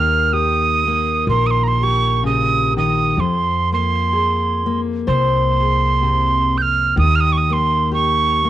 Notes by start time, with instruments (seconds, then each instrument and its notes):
Already playing: upright bass D#2, steel-string acoustic guitar D#3 G3 A#3 G4 A#4, tin whistle F6
0.33 steel-string acoustic guitar G4, tin whistle D#6
0.87 steel-string acoustic guitar A#3
1.27 upright bass A#1, steel-string acoustic guitar A#4, tin whistle C6
1.46 tin whistle D#6
1.51 tin whistle C6
1.63 tin whistle A#5
1.68 tin whistle C6
1.83 steel-string acoustic guitar G4, tin whistle C#6
2.23 steel-string acoustic guitar C#3, tin whistle D#6
2.77 steel-string acoustic guitar D#3, tin whistle D#6
3.17 upright bass F2, steel-string acoustic guitar F2, tin whistle C6
3.72 steel-string acoustic guitar A#3, tin whistle C6
4.13 steel-string acoustic guitar G#4
4.66 steel-string acoustic guitar A#3
5.07 upright bass C2, steel-string acoustic guitar C5, tin whistle C6
5.60 steel-string acoustic guitar G#4
6.02 steel-string acoustic guitar C3
6.58 tin whistle G6
6.62 tin whistle F6
6.96 upright bass D#2, steel-string acoustic guitar D#3, tin whistle D#6
7.15 tin whistle F6
7.20 tin whistle D#6
7.32 tin whistle C#6
7.37 tin whistle D#6
7.50 steel-string acoustic guitar A#3, tin whistle C6
7.91 steel-string acoustic guitar G4, tin whistle C#6
8.45 steel-string acoustic guitar A#3